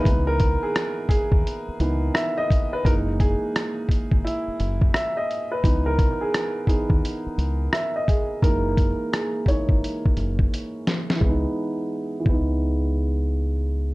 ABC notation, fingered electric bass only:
X:1
M:4/4
L:1/16
Q:"Swing 16ths" 1/4=86
K:C#dor
V:1 name="Fingered electric bass" clef=bass
C,,3 z4 D,, z2 C,,2 z4 | F,,,3 z4 G,,, z2 F,,,2 z4 | C,,3 z4 D,, z2 C,,2 z4 | F,,,3 z4 G,,, z2 F,,,2 z4 |
C,, z4 z C,,8- C,,2 |]